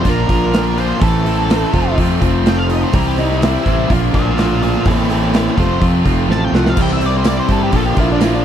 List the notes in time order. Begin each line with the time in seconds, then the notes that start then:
0.03 A#1 A#2 D3 F3 A#3 D4 F4 A#4, kick, open hi-hat
0.10 A#4
0.29 A#1 A#2 D3 F3 A#3 D4 F4, kick, open hi-hat
0.54 A#2 D3 F3 A#3 D4 F4 A#4, snare, open hi-hat
0.76 A#2 D3 F3 A#3 D4 F4 A#4, open hi-hat
0.80 C5
1.00 A1 A2 E3 A3 C4 E4 A4, kick, open hi-hat
1.24 A2 E3 A3 A4, open hi-hat
1.28 C4 E4
1.50 A2 E3 A3 C4 E4 A4, snare, open hi-hat
1.71 F1 F2 C3 F3 A3 C4 A4, kick, open hi-hat
1.76 F4
1.98 F2 C3 F3 A3 C4 F4, kick, open hi-hat
2.22 F1 F2 C3 F3 A3 C4 F4, kick, open hi-hat
2.43 F2 C3 F3 A3 C4 A4, open hi-hat
2.47 A3 C4 F4 G5, snare
2.59 F5
2.67 F2 C3 F3 A3 C4 A4 D#5, open hi-hat
2.72 F4
2.83 C5
2.93 C2 C3 E3 G3 C4 E4 A#4 C5, kick, open hi-hat
3.08 G4
3.17 C3 E3 G3 C4 D#4 E4 C5, open hi-hat
3.31 snare
3.42 C3 E3 G3 C4 E4 C5, snare, open hi-hat
3.65 A1 C3 E3 G3 C4 E4 C5, kick, open hi-hat
3.88 A#1 A#2 D3 F3 A#3 D4 F4 A#4, kick, open hi-hat
4.12 A#1 A#2 D3 A#3 D4 F4 D5 F5, kick, open hi-hat
4.16 F3
4.38 A#2 D3 F3 A#3 D4 F4 A#4 D5 F5, snare, open hi-hat
4.61 A#2 D3 F3 A#3 D4 F4 A#4 D5 F5, open hi-hat
4.84 A1 A2 E3 A3 C4 E4 G4 A4 D#5, kick, open hi-hat
5.08 A2 E3 A3 C4 E4 G4 A4 D#5, open hi-hat
5.32 A2 E3 A3 C4 E4 G4 A4 D#5, snare, open hi-hat
5.47 snare
5.56 F1 F2 C3 F3 A3 C4 F4 A4 C5, kick, open hi-hat
5.80 F2 C3 F3 A3 C4 F4, kick, open hi-hat
6.04 F1 F2 C3 F3 A3 C4 F4, kick, open hi-hat
6.28 A1 F2 C3 F3 A3 C4 F4 A4 A5, snare
6.45 G5
6.52 C2 F2 C3 F3 A3 C4 F4 A4 F#5, snare
6.66 F5, snare
6.76 C2 C3 E3 G3 C4 E4 C5, kick, tambourine, crash
6.81 G5
6.89 E5, tambourine
7.01 C3 E3 G3 C4 E4 C5, open hi-hat, tambourine
7.06 D5
7.14 C5, tambourine
7.24 C3 E3 G3 C4 E4 C5 D5, snare, open hi-hat, tambourine
7.37 C5, tambourine
7.47 G2 C3 E3 G3 C4 E4 C5, kick, open hi-hat
7.52 G3 A4
7.63 G4
7.72 A#1 A#2 D3 F3 A#3 D4 F4 A#4, kick, open hi-hat, tambourine
7.76 A4
7.86 G4, tambourine
7.95 A#1 A#2 D3 F3 A#3 D4 F4, kick, open hi-hat
8.00 E4
8.12 D4
8.19 A#2 D3 F3 A#3 D4 E4 F4 A#4, snare, open hi-hat, tambourine
8.35 D4